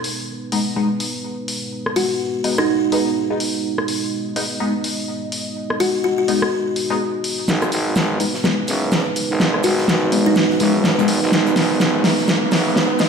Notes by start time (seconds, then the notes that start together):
Already playing: G#3 B3 D#4 B4
0.04 open hi-hat
0.52 G#3 B3 D#4, open hi-hat
0.76 G#3 B3 D#4
1.00 open hi-hat
1.48 open hi-hat
1.86 cross-stick
1.96 F#4, open hi-hat
2.44 G#3 B3 D#4, open hi-hat
2.58 D#4, cross-stick
2.92 G#3 B3 D#4, open hi-hat
3.30 G#3 B3 D#4
3.40 open hi-hat
3.64 D#5
3.78 cross-stick
3.88 open hi-hat
4.36 G#3 B3 D#4, open hi-hat
4.60 G#3 B3 D#4
4.84 open hi-hat
5.32 open hi-hat
5.70 cross-stick
5.80 F#4, open hi-hat
6.04 F#4
6.18 F#4
6.28 G#3 B3 D#4, open hi-hat
6.42 cross-stick
6.76 open hi-hat
6.90 G#3 B3 D#4
7.24 open hi-hat
7.48 G#1 G#3 B3 D#4 B4, snare, riser, shaker
7.62 cross-stick, closed hi-hat
7.72 G#1, open hi-hat, shaker
7.96 G#1, snare, shaker
8.20 G#3 B3 D#4, open hi-hat, shaker
8.34 snare
8.44 G#3 B3 D#4, snare, shaker
8.68 F#1, snare, open hi-hat, shaker
8.92 snare, shaker
9.16 open hi-hat, shaker
9.30 G#1
9.40 snare, shaker
9.54 cross-stick
9.63 G#1 F#4, open hi-hat, shaker
9.78 snare
9.88 G#1, snare, shaker
10.12 G#3 B3 D#4, open hi-hat, shaker
10.26 D#4
10.36 snare, shaker
10.50 snare
10.60 F#1 G#3 B3 D#4, open hi-hat, shaker
10.84 snare, shaker
10.98 G#1 G#3 B3 D#4, closed hi-hat
11.08 snare, open hi-hat, shaker
11.22 G#1, snare
11.32 G#1, snare, shaker
11.46 closed hi-hat
11.56 G#1, snare, open hi-hat, shaker
11.80 G#1, snare, shaker
12.04 G#3 B3 D#4, snare, open hi-hat, shaker
12.18 snare
12.28 snare, shaker
12.51 F#1, snare, open hi-hat, shaker
12.76 snare, shaker
12.99 G#3 B3 D#4, snare, open hi-hat, shaker